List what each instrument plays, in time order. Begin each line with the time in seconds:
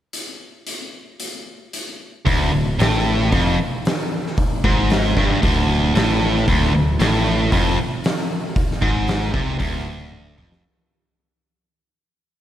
0.13 closed hi-hat
0.67 closed hi-hat
1.20 closed hi-hat
1.73 closed hi-hat
2.26 picked electric bass D1, distorted electric guitar D2, kick, open hi-hat
2.53 picked electric bass D1, distorted electric guitar D2
2.80 picked electric bass A1, distorted electric guitar A2, snare, open hi-hat
3.32 picked electric bass F1, distorted electric guitar F2, kick, open hi-hat
3.85 snare, open hi-hat
4.26 snare
4.37 kick, open hi-hat
4.64 picked electric bass G#1, distorted electric guitar G#2, kick
4.90 snare, open hi-hat
5.17 picked electric bass G1, distorted electric guitar G2, kick
5.42 picked electric bass D1, distorted electric guitar D2, kick, open hi-hat
5.95 picked electric bass A1, distorted electric guitar A2, snare, open hi-hat
6.37 snare
6.48 picked electric bass D1, distorted electric guitar D2, kick, open hi-hat
6.63 snare
6.74 picked electric bass D1, distorted electric guitar D2
7.00 picked electric bass A1, distorted electric guitar A2, snare, open hi-hat
7.52 picked electric bass F1, distorted electric guitar F2, kick, open hi-hat
8.04 snare, open hi-hat
8.56 kick, open hi-hat
8.71 snare
8.82 picked electric bass G#1, distorted electric guitar G#2, kick
9.07 snare, open hi-hat
9.33 picked electric bass C2, distorted electric guitar C3, kick
9.58 picked electric bass D1, distorted electric guitar D2, kick, open hi-hat
10.12 high tom
10.37 picked electric bass F1, distorted electric guitar F2, mid tom
10.52 snare